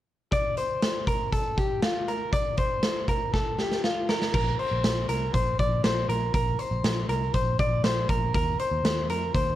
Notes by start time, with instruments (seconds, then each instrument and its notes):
0.32 clean electric guitar D5, kick, closed hi-hat
0.57 clean electric guitar C5, closed hi-hat
0.82 snare, closed hi-hat
1.07 clean electric guitar A#4, kick, closed hi-hat
1.33 clean electric guitar A4, kick, closed hi-hat
1.58 clean electric guitar G4, kick, closed hi-hat
1.82 clean electric guitar F4, snare, closed hi-hat
2.08 clean electric guitar A#4, closed hi-hat
2.33 clean electric guitar D5, kick, closed hi-hat
2.57 clean electric guitar C5, kick, closed hi-hat
2.83 snare, closed hi-hat
3.08 clean electric guitar A#4, kick, closed hi-hat
3.34 clean electric guitar A4, kick, snare
3.59 clean electric guitar G4, snare
3.72 snare
3.84 clean electric guitar F4, snare
4.09 clean electric guitar A#4, snare
4.22 snare
4.34 picked electric bass A#1, clean electric guitar A#4, kick, crash
4.59 clean electric guitar C5, closed hi-hat
4.71 picked electric bass A#1
4.83 picked electric bass A#1, snare, closed hi-hat
5.08 picked electric bass C2, clean electric guitar A#4, closed hi-hat
5.34 picked electric bass A#1, clean electric guitar C5, kick, closed hi-hat
5.59 picked electric bass A#1, clean electric guitar D5, kick, closed hi-hat
5.83 picked electric bass A#1, clean electric guitar C5, snare, closed hi-hat
6.08 picked electric bass A#1, clean electric guitar A#4, closed hi-hat
6.34 picked electric bass A#1, clean electric guitar A#4, kick, closed hi-hat
6.59 clean electric guitar C5, closed hi-hat
6.71 picked electric bass A#1
6.84 picked electric bass A#1, snare, closed hi-hat
7.09 picked electric bass C2, clean electric guitar A#4, closed hi-hat
7.34 picked electric bass A#1, clean electric guitar C5, kick, closed hi-hat
7.59 picked electric bass A#1, clean electric guitar D5, kick, closed hi-hat
7.84 picked electric bass A#1, clean electric guitar C5, snare, closed hi-hat
8.09 picked electric bass A#1, clean electric guitar A#4, kick, closed hi-hat
8.34 picked electric bass D#2, clean electric guitar A#4, kick, closed hi-hat
8.59 clean electric guitar C5, closed hi-hat
8.72 picked electric bass D#2
8.84 picked electric bass D#2, snare, closed hi-hat
9.09 picked electric bass F2, clean electric guitar A#4, closed hi-hat
9.35 picked electric bass D#2, clean electric guitar C5, kick, closed hi-hat